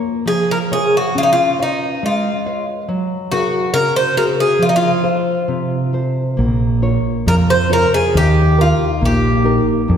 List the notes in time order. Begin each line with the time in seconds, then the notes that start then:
Already playing: A#3 F4 A#4 C#5
0.26 F3 G#4
0.51 A#4
0.71 F4 G#4 A#4 C#5
0.97 F#4
1.15 C#4 F4
1.23 D#4
1.33 F4
1.59 D#4 B4 C#5 F5
2.03 G#3 F4
2.46 B4 C#5 F5
2.89 F#3
3.31 F#4 G#4 A#4
3.74 C#3 A#4
3.96 C5
4.17 F#4 G#4 A#4
4.40 G#4
4.59 F3 F4
4.69 D#4
4.76 F4
5.03 F4 A4 C5
5.48 C3
5.93 F4 A4 C5
6.37 A#1 A#3
6.82 F4 A#4 C#5
7.26 F2 F3 A#4
7.50 C5
7.70 F4 A#4 C#5
7.94 G#4
8.14 D#2 D#3 G4
8.57 D#4 F4 G4 A#4
9.01 A#1 A#3 G4
9.44 D#4 G4 A#4
9.88 F2 F3